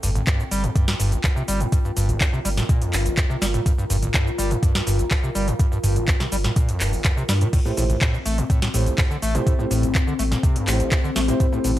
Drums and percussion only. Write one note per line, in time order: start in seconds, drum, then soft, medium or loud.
0.03 mid tom medium
0.03 open hi-hat loud
0.03 shaker medium
0.15 closed hi-hat soft
0.15 mid tom medium
0.15 shaker soft
0.27 kick loud
0.27 clap loud
0.27 shaker soft
0.40 shaker soft
0.51 open hi-hat loud
0.51 shaker medium
0.64 closed hi-hat soft
0.64 shaker soft
0.76 kick loud
0.76 closed hi-hat medium
0.76 shaker soft
0.88 snare medium
0.88 closed hi-hat medium
0.88 shaker soft
1.00 open hi-hat loud
1.00 shaker medium
1.12 closed hi-hat soft
1.12 shaker soft
1.24 kick loud
1.24 clap loud
1.24 open hi-hat medium
1.24 shaker soft
1.37 shaker soft
1.48 open hi-hat loud
1.48 shaker medium
1.60 closed hi-hat soft
1.60 shaker soft
1.72 kick loud
1.72 closed hi-hat medium
1.72 shaker soft
1.85 shaker soft
1.97 open hi-hat loud
1.97 shaker medium
2.09 closed hi-hat soft
2.09 mid tom medium
2.09 shaker soft
2.21 kick loud
2.21 clap loud
2.21 shaker soft
2.34 shaker soft
2.45 open hi-hat loud
2.45 shaker medium
2.57 snare medium
2.57 closed hi-hat medium
2.57 shaker soft
2.69 kick loud
2.69 closed hi-hat medium
2.69 shaker soft
2.82 closed hi-hat medium
2.82 shaker soft
2.93 clap medium
2.93 open hi-hat loud
2.93 shaker medium
3.06 closed hi-hat medium
3.06 shaker soft
3.17 kick loud
3.17 clap loud
3.17 closed hi-hat medium
3.17 shaker soft
3.30 shaker soft
3.42 snare medium
3.42 open hi-hat loud
3.42 shaker medium
3.54 closed hi-hat soft
3.54 shaker soft
3.66 kick loud
3.66 closed hi-hat medium
3.66 shaker soft
3.79 shaker soft
3.90 mid tom medium
3.90 open hi-hat loud
3.90 shaker medium
4.02 closed hi-hat medium
4.02 mid tom medium
4.02 shaker soft
4.14 kick loud
4.14 clap loud
4.14 shaker soft
4.27 shaker soft
4.39 open hi-hat medium
4.39 shaker medium
4.51 closed hi-hat medium
4.51 shaker soft
4.63 kick loud
4.63 closed hi-hat medium
4.63 shaker soft
4.75 snare medium
4.75 closed hi-hat medium
4.75 shaker soft
4.87 open hi-hat loud
4.87 shaker medium
4.99 closed hi-hat medium
4.99 shaker soft
5.11 kick loud
5.11 clap loud
5.11 open hi-hat medium
5.11 shaker soft
5.24 shaker soft
5.35 open hi-hat loud
5.35 shaker medium
5.48 closed hi-hat medium
5.48 shaker soft
5.59 kick loud
5.59 closed hi-hat medium
5.59 shaker soft
5.72 shaker soft
5.84 mid tom medium
5.84 open hi-hat loud
5.84 shaker medium
5.96 closed hi-hat medium
5.96 mid tom medium
5.96 shaker soft
6.08 kick loud
6.08 clap loud
6.08 shaker soft
6.20 snare medium
6.20 shaker soft
6.32 open hi-hat loud
6.32 shaker medium
6.44 snare medium
6.44 closed hi-hat medium
6.44 shaker soft
6.56 kick loud
6.56 closed hi-hat medium
6.56 shaker soft
6.69 closed hi-hat medium
6.69 shaker soft
6.80 clap medium
6.80 open hi-hat loud
6.80 shaker medium
6.93 open hi-hat medium
6.93 shaker soft
7.04 kick loud
7.04 clap loud
7.04 closed hi-hat medium
7.04 shaker soft
7.18 shaker soft
7.29 snare medium
7.29 open hi-hat loud
7.29 shaker medium
7.41 closed hi-hat medium
7.41 shaker soft
7.53 kick loud
7.53 closed hi-hat medium
7.53 crash medium
7.53 shaker soft
7.66 shaker soft
7.77 mid tom medium
7.77 open hi-hat loud
7.77 shaker medium
7.90 closed hi-hat medium
7.90 mid tom medium
7.90 shaker soft
8.01 kick loud
8.01 clap loud
8.01 shaker soft
8.14 shaker soft
8.26 open hi-hat loud
8.26 shaker medium
8.38 closed hi-hat medium
8.38 shaker soft
8.50 kick loud
8.50 closed hi-hat medium
8.50 shaker soft
8.62 snare medium
8.62 closed hi-hat medium
8.62 shaker soft
8.74 open hi-hat loud
8.74 shaker medium
8.86 closed hi-hat medium
8.86 shaker soft
8.98 kick loud
8.98 clap loud
8.98 open hi-hat medium
8.98 shaker soft
9.11 shaker soft
9.22 open hi-hat loud
9.22 shaker medium
9.35 closed hi-hat medium
9.35 shaker soft
9.47 kick loud
9.47 closed hi-hat medium
9.47 shaker soft
9.60 shaker soft
9.71 open hi-hat loud
9.71 shaker medium
9.83 closed hi-hat medium
9.83 mid tom medium
9.83 shaker soft
9.95 kick loud
9.95 clap loud
9.95 shaker soft
10.08 shaker soft
10.19 open hi-hat loud
10.19 shaker medium
10.32 snare medium
10.32 closed hi-hat medium
10.32 shaker soft
10.43 kick loud
10.43 closed hi-hat medium
10.43 shaker soft
10.56 closed hi-hat medium
10.56 shaker soft
10.67 clap medium
10.67 open hi-hat loud
10.67 shaker medium
10.80 closed hi-hat medium
10.80 shaker soft
10.92 kick loud
10.92 clap loud
10.92 closed hi-hat medium
10.92 shaker soft
11.05 shaker soft
11.16 snare medium
11.16 open hi-hat loud
11.16 shaker medium
11.28 closed hi-hat medium
11.28 shaker soft
11.40 kick loud
11.40 closed hi-hat medium
11.40 shaker soft
11.53 shaker soft
11.64 mid tom medium
11.64 open hi-hat loud
11.64 shaker medium